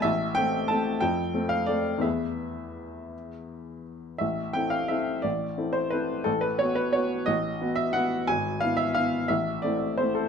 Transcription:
\new Staff \with { instrumentName = "Upright piano" } { \time 3/4 \key a \minor \tempo 4 = 174 << { e''4 g''4 a''4 | g''4. f''8 d''4 | e''2.~ | e''2 r4 |
e''4 g''8 f''8 e''4 | d''4. c''8 b'4 | a'8 b'8 cis''8 b'8 cis''4 | dis''4. e''8 fis''4 |
gis''4 f''8 e''8 f''4 | e''4 d''4 c''8 a'8 | } \\ { a,,4 <a c' a'>4 <a c' a'>4 | f,4 <a c' a'>4 <a c' a'>4 | <e, b e' gis'>2.~ | <e, b e' gis'>2. |
a,,4 <c' e' a'>4 <c' e' a'>4 | a,,4 <c' e' a'>4 <c' e' a'>4 | a,,4 <b fis'>4 <b fis'>4 | a,,4 <b fis'>4 <b fis'>4 |
gis,,4 <b e'>4 <b e'>4 | a,,4 <a c' e'>4 <a c' e'>4 | } >> }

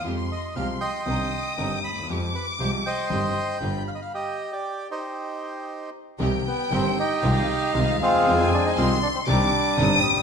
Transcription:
<<
  \new Staff \with { instrumentName = "Violin section" } { \time 4/4 \key c \minor \tempo 4 = 117 c'''4 c'''4 ees'''2 | d'''2 c'''4 b''4 | r1 | g''2 f''2 |
aes''4 c'''4 d'''4 ees'''4 | }
  \new Staff \with { instrumentName = "Bandoneon" } { \time 4/4 \key c \minor << { r8 ees''8 f''8 c'''4. r8 b''8 | r8 b'8 c''8 g''2 f''32 ees''32 f''16 | ees''8. d''8. c''2 r8 | r8 b8 c'8 g'4. r8 f'8~ |
f'8 d'16 ees'16 f'8 d'16 c'16 d'4. r8 | } \\ { r4. <ees'' g''>2 r8 | r4. <c'' ees''>4. r4 | g'8. g'8. <ees' g'>2 r8 | r4. ees'2 <aes c'>8~ |
<aes c'>4. r8 g2 | } >> }
  \new Staff \with { instrumentName = "String section" } { \time 4/4 \key c \minor <aes f' g'>8 r8 <aes f' g'>8 r8 <c' d' ees'>8 r8 <c' d' ees'>8 r8 | <aes f' g'>8 r8 <aes f' g'>8 r8 <c' ees' g'>8 r8 <b f' g'>8 r8 | r1 | <c' ees' g'>8 r8 <c' ees' g'>8 r8 <aes c' f'>8 r8 <aes c' f'>8 r8 |
<aes ees' f'>8 r8 <aes ees' f'>8 r8 <c' d' ees'>8 r8 <c' d' ees'>8 r8 | }
  \new Staff \with { instrumentName = "Grand piano" } { \clef bass \time 4/4 \key c \minor <f, f aes c' g'>8 r8 <c, c f aes c' g'>8 r8 <c, c ees c' d' g'>8 r8 <g,, g, ees c' d' g'>8 r32 d,32 ees,32 e,32 | <f, f aes c' g'>8 r8 <c, c f aes c' g'>8 r8 <g,, g, ees g c' g'>8 r8 <g,, g, d g b f'>8 r8 | r1 | <c, c ees g c' g'>8 r8 <g,, g, ees g c' g'>8 r8 <c, c ees aes c' f'>8 r8 <c, c ees aes c' f'>8 r32 d,32 ees,32 e,32 |
<f, ees f aes c' f'>8 r8 <c, c ees aes c' f'>8 r8 <c, c ees c' d' g'>8 r8 <g,, g, ees c' d' g'>8 r32 a,,32 bes,,32 r32 | }
  \new Staff \with { instrumentName = "Double bass" } { \clef bass \time 4/4 \key c \minor f,8 r8 c,8 r8 c,8 r8 g,,8 ees,8 | f,8 r8 c,8 r8 g,,8 r8 g,,8 r8 | r1 | c,8 r8 g,,8 r8 c,8 r8 c,8 ees,8 |
f,8 r8 c,8 r8 c,8 r8 g,,8 bes,,8 | }
>>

